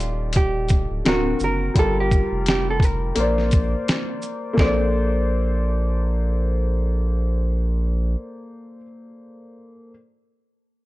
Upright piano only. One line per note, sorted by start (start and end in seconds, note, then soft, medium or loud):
0.00 0.99 F3 medium
0.00 1.00 D#4 medium
0.00 1.01 G4 medium
0.00 1.01 A4 medium
0.00 1.02 D5 medium
1.05 1.75 D3 medium
1.05 1.76 C4 medium
1.05 1.76 F#4 medium
1.05 1.76 A#4 medium
1.74 3.13 G3 medium
1.74 3.14 F4 medium
1.74 3.15 G4 medium
1.80 3.16 A#4 medium
3.15 4.52 A#3 medium
3.15 4.55 A#4 medium
3.15 4.56 C5 medium
3.20 4.57 D5 medium
4.53 8.74 A#3 medium
4.53 8.77 A4 medium
4.60 8.81 C5 medium
4.60 8.84 D5 medium